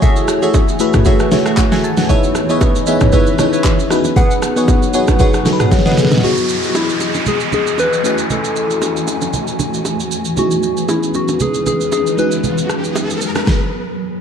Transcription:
Already playing: ambient pad E3 A3 F#4 G#5, fm electric piano A3 E4 F#4 G#4 C#5
0.02 synth pluck F#4 G#4 A4 E5, kick, low conga, shaker
0.16 shaker
0.28 cross-stick, shaker
0.42 fm electric piano A3 E4 F#4 G#4 C#5, synth pluck F#4 G#4 A4 E5, shaker
0.54 kick, high bongo, shaker
0.69 shaker
0.80 fm electric piano A3 E4 F#4 G#4 B4, synth pluck F#4 G#4 A4 E5, shaker
0.94 kick, cross-stick, mid tom, low bongo, shaker
1.05 fm electric piano A3 E4 F#4 G#4 C#5, synth pluck F#4 G#4 A4 E5, kick, low conga, shaker
1.20 cross-stick, shaker
1.32 fm electric piano A3 E4 F#4 G#4 C#5, snare, low bongo, low conga, shaker
1.46 synth pluck F#4 G#4 A4 E5, cross-stick, shaker
1.57 fm electric piano F#5, kick, clap, high bongo, shaker
1.71 synth pluck F#4 G#4 A4 E5, fm electric piano G#5, snare, shaker
1.84 fm electric piano A5, shaker
1.97 fm electric piano F#5, snare, low bongo, shaker
2.09 fm electric piano B3 D#4 E4 G#4 C#5, ambient pad C#4 B4, synth pluck B4 C#5 E5, kick, low conga, shaker
2.24 shaker
2.35 cross-stick, shaker
2.49 fm electric piano B3 E4 G#4 C#5 D#5, synth pluck B4 C#5 E5, shaker
2.61 kick, high bongo, shaker
2.76 shaker
2.87 fm electric piano B3 D#4 E4 G#4 E5, synth pluck B4 C#5 E5, shaker
3.01 kick, cross-stick, mid tom, low bongo, shaker
3.12 fm electric piano B3 D#4 E4 G#4 C#5, synth pluck B4 C#5 E5, kick, low conga, shaker
3.27 shaker
3.39 fm electric piano B3 D#4 E4 G#4 C#5, cross-stick, low bongo, low conga, shaker
3.53 synth pluck B4 C#5 E5, shaker
3.64 kick, clap, high bongo, shaker
3.79 shaker
3.90 ambient pad F#3 B3 G#4, fm electric piano B3 D#4 F#4 G#4 B4, cross-stick, shaker
4.04 low bongo, shaker
4.16 synth pluck G#4 B4 F#5, kick, low conga, shaker
4.31 shaker
4.42 cross-stick, shaker
4.56 fm electric piano B3 D#4 F#4 G#4 C#5, synth pluck G#4 B4 F#5, shaker
4.68 kick, high bongo, shaker
4.83 shaker
4.94 fm electric piano B3 D#4 F#4 G#4 C#5, synth pluck G#4 B4 F#5, shaker
5.08 kick, cross-stick, low bongo, shaker
5.19 fm electric piano B3 D#4 F#4 G#4 C#5, synth pluck G#4 B4 F#5, kick, low conga, shaker
5.34 cross-stick, shaker
5.45 fm electric piano B3 D#4 F#4 G#4 A4, snare, low bongo, low conga, shaker
5.52 fm electric piano B4
5.59 synth pluck G#4 B4 F#5, cross-stick, mid tom, shaker
5.71 fm electric piano F#5, kick, snare, high bongo, shaker
5.79 snare
5.85 synth pluck G#4 B4 F#5, fm electric piano D#5, snare, shaker
5.92 snare
5.98 snare, shaker
6.05 snare
6.11 fm electric piano B4, snare, low bongo, shaker
6.18 snare
6.22 ambient pad E3 D#5 G#5, fm electric piano B3 E4 F#4 G#4 D#5, soft synth lead F#4, downlifter, low conga, shaker
6.37 shaker
6.49 shaker
6.63 shaker
6.69 soft synth lead F#4
6.75 soft synth lead E4, high bongo, shaker
6.89 shaker
7.00 high bongo, shaker
7.14 low bongo, shaker
7.26 soft synth lead G#4, low conga, shaker
7.40 shaker
7.52 soft synth lead G#4, high bongo, low bongo, low conga, shaker
7.67 shaker
7.78 soft synth lead B4, high bongo, shaker
7.93 shaker
8.03 fm electric piano A3 C#4 E4 F#4 G#5, ambient pad A3 F#4, soft synth lead B4, shaker
8.18 shaker
8.30 soft synth lead A4, low conga, shaker
8.44 shaker
8.56 shaker
8.71 shaker
8.82 high bongo, shaker
8.97 shaker
9.07 high bongo, shaker
9.22 low bongo, shaker
9.33 low conga, shaker
9.47 shaker
9.59 high bongo, low bongo, low conga, shaker
9.74 shaker
9.85 high bongo, shaker
10.00 shaker
10.12 shaker
10.25 shaker
10.36 fm electric piano B3 C#4 D#4 E4 G#4, ambient pad C#4 B4, soft synth lead F#4, riser, low conga, shaker
10.51 shaker
10.63 shaker
10.77 shaker
10.89 soft synth lead E4, high bongo, shaker
11.03 shaker
11.14 soft synth lead F#4, high bongo, shaker
11.28 low bongo, shaker
11.40 soft synth lead G#4, low conga, shaker
11.54 shaker
11.66 soft synth lead G#4, high bongo, low bongo, low conga, shaker
11.81 shaker
11.92 soft synth lead G#4, high bongo, shaker
12.07 shaker
12.17 fm electric piano G#3 B3 D#4 F#4 G#4, soft synth lead B4, shaker
12.32 shaker
12.44 low conga, shaker
12.58 shaker
12.70 cross-stick, shaker
12.84 shaker
12.96 high bongo, shaker
13.10 shaker
13.21 shaker
13.35 cross-stick, low bongo, shaker
13.47 kick, snare

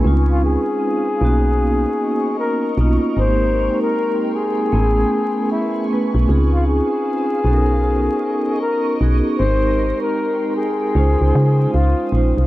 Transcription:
0.03 fm bass C#2, vibraphone G#3 C4 C#4 D#4 F4
0.31 flugelhorn F4
0.45 flugelhorn G#4
1.21 fm bass B1, vibraphone A#3 B3 C#4 D#4 F#4, ambient pad A#4 D#5 C#6
2.39 flugelhorn A#4
2.78 fm bass B1, vibraphone A#3 B3 C#4 D#4 F4
3.16 fm bass G#1, vibraphone G#3 A#3 C4 D#4 G4, flugelhorn C5, ambient pad G5 C6
3.82 flugelhorn A#4
4.35 flugelhorn G#4
4.71 fm bass A1, vibraphone A3 B3 C#4 E4, ambient pad B4 G#5 C#6
4.76 vibraphone G#4
5.52 flugelhorn E4
5.89 vibraphone A3 B3 C#4 E4 B4
6.15 fm bass B1
6.28 fm bass C#2, vibraphone C4 C#4 D#4 F4 G#4
6.53 flugelhorn F4
6.67 flugelhorn G#4
7.44 fm bass B1, vibraphone B3 C#4 D#4 F#4 A4, ambient pad A#4 D#5 C#6
7.54 vibraphone A#4
8.61 flugelhorn A#4
9.00 fm bass B1, vibraphone B3 C#4 D#4 F#4 G#4
9.39 fm bass G#1, vibraphone G#3 C4 D#4 G4 A#4, flugelhorn C5, ambient pad G5 C6
10.03 flugelhorn A#4
10.57 flugelhorn G#4
10.94 fm bass C#2, vibraphone G#3 C#4 D#4 F4 C5, ambient pad C5 F5 D#6
11.21 fm bass C#2
11.35 fm bass C#3
11.74 fm bass C#2, flugelhorn F4
12.12 fm bass A#1, vibraphone G#3 C#4 D#4 F4
12.16 vibraphone C5
12.38 fm bass C2

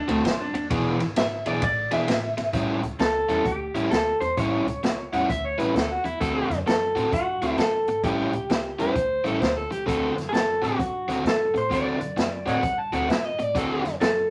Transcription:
0.08 upright bass D2, overdriven electric guitar D3 A3 C4 F#4, clean electric guitar A3, ride
0.24 upright bass G2, clean electric guitar C4, muted overdriven electric guitar stroke, kick, snare, ride
0.41 clean electric guitar D4
0.54 upright bass D#2, muted overdriven electric guitar stroke, ride
0.70 upright bass E1, overdriven electric guitar E3 B3 D4 G#4, kick, ride
1.00 upright bass G#1, muted overdriven electric guitar stroke, snare, ride
1.16 upright bass G#1, clean electric guitar E5, muted overdriven electric guitar stroke, snare, ride
1.46 upright bass B1, overdriven electric guitar E3 B3 D4 G#4, clean electric guitar D5, ride
1.62 upright bass A1, clean electric guitar D5, muted overdriven electric guitar stroke, kick, ride
1.91 upright bass E1, overdriven electric guitar E3 B3 D4 G#4, clean electric guitar E5, snare, ride
2.08 upright bass A1, muted overdriven electric guitar stroke, snare, ride
2.37 upright bass G#1, muted overdriven electric guitar stroke, snare, ride
2.53 upright bass A1, overdriven electric guitar A2 G3 C#4 E4, kick, closed hi-hat
2.83 upright bass C#2, muted overdriven electric guitar stroke, closed hi-hat
2.99 upright bass C#2, clean electric guitar A4, muted overdriven electric guitar stroke, snare, closed hi-hat
3.29 upright bass E2, overdriven electric guitar A2 G3 C#4 E4, clean electric guitar A4, closed hi-hat
3.45 upright bass D2, clean electric guitar G4, muted overdriven electric guitar stroke, kick, closed hi-hat
3.74 upright bass A1, overdriven electric guitar A2 G3 C#4 E4, closed hi-hat
3.90 upright bass D2, clean electric guitar A4, muted overdriven electric guitar stroke, snare, closed hi-hat
4.20 upright bass E2, clean electric guitar C5, muted overdriven electric guitar stroke, closed hi-hat
4.37 upright bass A1, overdriven electric guitar A2 G3 C#4 E4, clean electric guitar C#5, kick, closed hi-hat
4.66 upright bass C#2, muted overdriven electric guitar stroke, closed hi-hat
4.83 muted overdriven electric guitar stroke, snare, closed hi-hat
5.13 upright bass E2, overdriven electric guitar A2 G3 C#4 E4, harmonica F#5, closed hi-hat
5.29 upright bass D2, harmonica E5, muted overdriven electric guitar stroke, kick, closed hi-hat
5.45 harmonica C#5
5.58 upright bass A1, overdriven electric guitar A2 G3 C#4 E4, harmonica B4, closed hi-hat
5.74 upright bass D2, harmonica A4, muted overdriven electric guitar stroke, snare, closed hi-hat
5.92 harmonica F#4
6.04 upright bass E2, harmonica E4, muted overdriven electric guitar stroke, closed hi-hat
6.20 upright bass D2, overdriven electric guitar D3 A3 C4 F#4, harmonica A4, kick, closed hi-hat
6.50 upright bass F#2, muted overdriven electric guitar stroke, snare, closed hi-hat
6.66 clean electric guitar A4, muted overdriven electric guitar stroke, snare, closed hi-hat
6.95 upright bass A2, overdriven electric guitar D3 A3 C4 F#4, closed hi-hat
7.12 upright bass G2, clean electric guitar F#4, muted overdriven electric guitar stroke, kick, closed hi-hat
7.41 upright bass D2, overdriven electric guitar D3 A3 C4 F#4, closed hi-hat
7.57 upright bass G2, clean electric guitar A4, muted overdriven electric guitar stroke, snare, closed hi-hat
7.87 upright bass G#1, muted overdriven electric guitar stroke, closed hi-hat
8.03 upright bass A1, overdriven electric guitar A2 G3 C#4 E4, clean electric guitar G4, kick, closed hi-hat
8.33 upright bass C#2, muted overdriven electric guitar stroke, closed hi-hat
8.49 upright bass C#2, muted overdriven electric guitar stroke, snare, closed hi-hat
8.79 upright bass E2, overdriven electric guitar A2 G3 C#4 E4, harmonica C5, closed hi-hat
8.95 upright bass D2, muted overdriven electric guitar stroke, kick, closed hi-hat
9.24 upright bass A1, overdriven electric guitar A2 G3 C#4 E4, harmonica A4, closed hi-hat
9.40 upright bass D2, harmonica C5, muted overdriven electric guitar stroke, kick, snare, closed hi-hat
9.56 harmonica A4
9.71 upright bass C#2, harmonica G4, muted overdriven electric guitar stroke, closed hi-hat
9.86 upright bass D2, overdriven electric guitar D3 A3 C4 F#4, harmonica A4, kick, closed hi-hat
10.16 upright bass F#2, muted overdriven electric guitar stroke, snare, closed hi-hat
10.29 upright bass F#2, clean electric guitar G#4, muted overdriven electric guitar stroke
10.34 clean electric guitar A4, snare, closed hi-hat
10.62 upright bass A2, overdriven electric guitar D3 A3 C4 F#4, clean electric guitar F#4, closed hi-hat
10.79 upright bass G2, muted overdriven electric guitar stroke, kick, closed hi-hat
11.08 upright bass D2, overdriven electric guitar D3 A3 C4 F#4, closed hi-hat
11.24 upright bass G2, clean electric guitar A4, muted overdriven electric guitar stroke, snare, closed hi-hat
11.54 upright bass A2, clean electric guitar C5, muted overdriven electric guitar stroke, closed hi-hat
11.70 upright bass D2, overdriven electric guitar D3 A3 C4 F#4, clean electric guitar D5, kick, closed hi-hat
12.00 upright bass F#2, muted overdriven electric guitar stroke, closed hi-hat
12.17 upright bass F#2, muted overdriven electric guitar stroke, snare, closed hi-hat
12.46 upright bass A2, overdriven electric guitar D3 A3 C4 F#4, harmonica C#5 D#5 F#5, closed hi-hat
12.63 upright bass G2, muted overdriven electric guitar stroke, kick, closed hi-hat
12.79 harmonica A5
12.92 upright bass D2, overdriven electric guitar D3 A3 C4 F#4, harmonica F#5, closed hi-hat
13.08 upright bass G2, harmonica E5, muted overdriven electric guitar stroke, snare, closed hi-hat
13.26 harmonica D#5
13.39 upright bass A2, muted overdriven electric guitar stroke, closed hi-hat
13.43 harmonica D5
13.55 upright bass D2, overdriven electric guitar D3 A3 C4 F#4, harmonica A4, kick, closed hi-hat
13.84 upright bass F#2, muted overdriven electric guitar stroke, snare, closed hi-hat
14.01 upright bass F#2, clean electric guitar A4, muted overdriven electric guitar stroke, snare, closed hi-hat

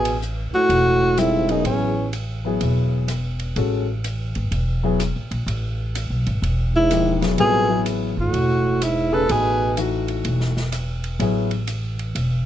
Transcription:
Already playing: upright bass A1, trombone B2, alto saxophone G#4
0.05 ride
0.22 hi-hat pedal
0.53 trombone A2, alto saxophone F#4, muted upright bass stroke
0.69 upright bass E1, ride
1.17 trombone G#2, grand piano G3 C4 F4 A4, alto saxophone E4, cross-stick, hi-hat pedal, ride
1.49 trombone F#2, grand piano F#3 B3 E4 G#4, alto saxophone D#4, ride
1.65 upright bass A1, trombone E2, alto saxophone C#4, ride
2.13 hi-hat pedal, ride
2.45 grand piano F#3 B3 E4 G#4
2.61 upright bass E1, ride
3.08 cross-stick, hi-hat pedal, ride
3.40 ride
3.56 upright bass A1, grand piano G#3 C#4 F#4 A4, ride
4.04 hi-hat pedal, ride
4.35 upright bass G#1, ride
4.51 upright bass E1, ride
4.83 grand piano F#3 B3 E4 G#4
5.00 cross-stick, hi-hat pedal, ride
5.16 upright bass A1
5.31 upright bass A#1, ride
5.46 upright bass A1, ride
5.95 hi-hat pedal, ride
6.10 upright bass B1
6.26 upright bass G#1, ride
6.42 upright bass E1, ride
6.74 trombone G#2, alto saxophone E4
6.90 grand piano F3 A#3 D#4 G4, cross-stick, hi-hat pedal, ride
7.21 grand piano F#3 B3 E4 G#4, snare, ride
7.38 upright bass A1, trombone B2, grand piano G3 C4 F4 A4, alto saxophone G#4, ride
7.69 grand piano F#3 B3 E4 G#4
7.86 hi-hat pedal, ride
8.17 upright bass G#1, trombone A2, alto saxophone F#4
8.33 upright bass E1, ride
8.82 trombone G#2, alto saxophone E4, cross-stick, hi-hat pedal, ride
9.12 trombone C#3, grand piano A3 D#4 G#4 B4, alto saxophone A4
9.28 upright bass A1, trombone B2, ride
9.32 alto saxophone G#4
9.77 grand piano E3 A3 D#4 F#4, hi-hat pedal, ride
10.08 ride
10.25 upright bass E1, ride
10.40 snare
10.57 snare
10.72 cross-stick, hi-hat pedal, ride
11.04 ride
11.19 upright bass A1, grand piano F#3 B3 E4 G#4, ride
11.51 ride
11.67 hi-hat pedal, ride
11.99 ride
12.15 upright bass E1, ride

